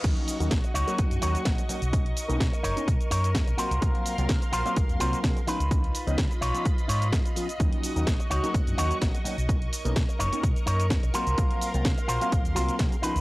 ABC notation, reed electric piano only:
X:1
M:4/4
L:1/16
Q:"Swing 16ths" 1/4=127
K:Ebm
V:1 name="Reed electric piano"
[G,B,DE]3 [G,B,DE] z3 [G,B,DE]3 [G,B,DE]2 [G,B,DG] z [G,B,DE] z | [^A,=B,^C^D] z2 [A,B,CD] z3 [A,B,CD] z6 [G,_B,=CG] z | [G,B,=Cf]3 [G,B,CF] z3 [G,B,Cf]3 [G,B,CF]2 [G,B,CA] z [F,_CDE] z | [F,CDE] z2 [F,CDE] z3 [F,CDE] z6 [F,CDF] z |
[G,B,DE]3 [G,B,DE] z3 [G,B,DE]3 [G,B,DE]2 [G,B,DG] z [G,B,DE] z | [^A,=B,^C^D] z2 [A,B,CD] z3 [A,B,CD] z6 [G,_B,=CG] z | [G,B,=Cf]3 [G,B,CF] z3 [G,B,Cf]3 [G,B,CF]2 [G,B,CA] z [F,_CDE] z |]